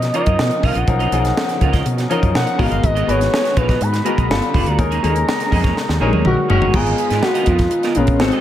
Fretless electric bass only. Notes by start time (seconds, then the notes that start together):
0.27 F#2
0.39 B2
0.63 B1
0.75 A#1
0.87 B1
1.12 B1
1.61 C#2
1.85 B2
2.23 F#2
2.34 B2
2.59 G#1
2.71 G1
2.83 G#1
3.08 G#1
3.57 A#1
3.81 G#2
4.18 B1
4.30 G1
4.54 F1
4.67 D2
4.79 D#2
5.04 D#2
5.52 F2
5.89 D#2
6.01 A#1
6.13 D#2
6.25 A#1
6.50 F#1
6.62 G1
6.74 G#1
7.10 G#2
7.47 F2
7.96 A#1
8.20 G#1